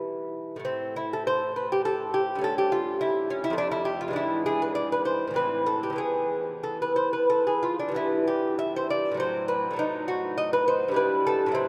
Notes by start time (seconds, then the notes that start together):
Already playing: E3 G3 B3 E4
0.56 A2 A3
0.65 C4
0.96 E4
1.13 A4
1.27 C5
1.56 B4
1.72 G4
1.85 A4
2.14 G4
2.35 G2 A3
2.41 C#4 A4
2.58 G4
2.72 F4
3.01 E4
3.30 C#4
3.44 E4
3.50 F2 A3
3.58 D4
3.71 E4
3.85 G4
4.01 F4
4.08 G#2 E3
4.13 D4 E4
4.46 G#4
4.62 B4
4.75 D5
4.92 B4
5.05 C5
5.28 A2 E3
5.34 C4 B4
5.66 A4
5.83 G4
5.90 E2 E3
5.96 B3 G#4
6.63 A4
6.82 B4
6.96 C5
7.13 B4
7.30 A4
7.47 G#4
7.63 F4
7.79 D4
7.89 G2 E3
7.94 B3 E4
8.28 G4
8.59 E5
8.76 C5
8.90 D5
9.12 A2 F#3
9.17 C4 C5
9.48 B4
9.71 A2 F#3
9.76 B3 D#4
10.08 F#4
10.38 D#5
10.53 B4
10.68 C5
10.88 G2 G3
10.94 E4 B4
11.27 A4
11.46 A2 F#3
11.52 C4 E4